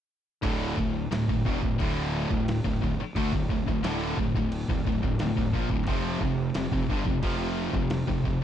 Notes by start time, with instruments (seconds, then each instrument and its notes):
0.43 fingered electric bass D1, distorted electric guitar D2 A2 D3, kick, crash
0.77 fingered electric bass D1, distorted electric guitar D2 A2, kick
1.12 fingered electric bass D1, distorted electric guitar D2 A2, snare, crash
1.28 fingered electric bass D1, distorted electric guitar D2 A2, kick
1.45 fingered electric bass E1, distorted electric guitar E2 B2, kick
1.62 fingered electric bass D1, distorted electric guitar D2 A2, kick
1.79 fingered electric bass D1, distorted electric guitar D2 A2 D3, kick, crash
2.30 fingered electric bass D1, distorted electric guitar D2 A2, kick
2.48 snare, crash
2.64 fingered electric bass D1, distorted electric guitar D2 A2, kick
2.81 fingered electric bass D1, distorted electric guitar D2 A2, kick
2.98 muted fingered electric bass stroke, muted distorted electric guitar stroke
3.15 fingered electric bass D2, distorted electric guitar D3 A3, kick, crash
3.32 fingered electric bass D1, distorted electric guitar D2 A2, kick
3.49 fingered electric bass D1, distorted electric guitar D2 A2, kick
3.67 fingered electric bass D1, distorted electric guitar D2 A2, kick
3.83 fingered electric bass D1, distorted electric guitar D2 A2 D3, snare, crash
4.17 fingered electric bass D1, distorted electric guitar D2 A2, kick
4.34 fingered electric bass D1, distorted electric guitar D2 A2, kick
4.52 crash
4.68 fingered electric bass D1, distorted electric guitar D2 A2, kick
4.85 fingered electric bass D1, distorted electric guitar D2 A2, kick
5.02 fingered electric bass D1, distorted electric guitar D2 A2, kick
5.19 fingered electric bass D1, distorted electric guitar D2 A2, snare, crash
5.36 fingered electric bass D1, distorted electric guitar D2 A2, kick
5.53 fingered electric bass A#1, distorted electric guitar A#2 F3, kick
5.70 fingered electric bass D1, distorted electric guitar D2 A2, kick
5.87 fingered electric bass F1, distorted electric guitar F2 C3 F3, kick, crash
6.21 fingered electric bass F1, distorted electric guitar F2 C3, kick
6.54 fingered electric bass F1, distorted electric guitar F2 C3, snare, crash
6.71 fingered electric bass F1, distorted electric guitar F2 C3, kick
6.89 fingered electric bass G1, distorted electric guitar G2 D3, kick
7.06 fingered electric bass F1, distorted electric guitar F2 C3, kick
7.22 fingered electric bass F1, distorted electric guitar F2 C3 F3, kick, crash
7.73 fingered electric bass F1, distorted electric guitar F2 C3, kick
7.90 snare, crash
8.07 fingered electric bass F1, distorted electric guitar F2 C3, kick
8.24 fingered electric bass F1, distorted electric guitar F2 C3, kick